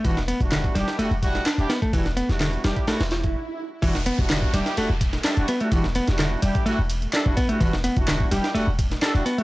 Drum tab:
RD |x-x-x-x-x-x-xxx-|x-x-x-x-xxx-----|x-x-x-x-x-x-xxx-|x-x-x-x-x-x-x-x-|
HH |xxxxxxxxxxxxxxxx|xxxxxxxxxxxx----|x-xxx-xxx-xxx-xx|x-xxx-xxx-xxx-xx|
CP |----x-------x---|----x-----------|----x-------x---|----x-------x---|
SD |-o--o-oo---oo-o-|-o-oo-o-ooo-----|-o--o-oo---oo---|-o-oo-------o---|
BD |o--o-o----o----o|o------o---o----|o--o-o----o-----|o------o-----oo-|

RD |x-x-x-x-x-x-xxx-|
HH |x-xxx-xxx-xxx-xx|
CP |----x-------x---|
SD |-o--o-oo---oo---|
BD |o--o-o----o-----|